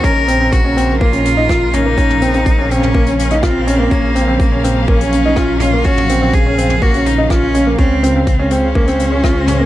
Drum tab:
HH |x-x-x-x--xx-x-x-|x-xxx-x--xxxx-x-|x-x-x-x--xx-x-x-|x-x-x-x--xx-x-x-|
SD |------------r---|------------r---|------------r---|------------r---|
T2 |--------------o-|-o-----o--------|--------------o-|-o-----o--------|
BD |o---o---o---o---|o---o---o---o---|o---o---o---o---|o---o---o---o---|

HH |x-x-x-x--xx-x-x-|
SD |------------r---|
T2 |--------------o-|
BD |o---o---o---o---|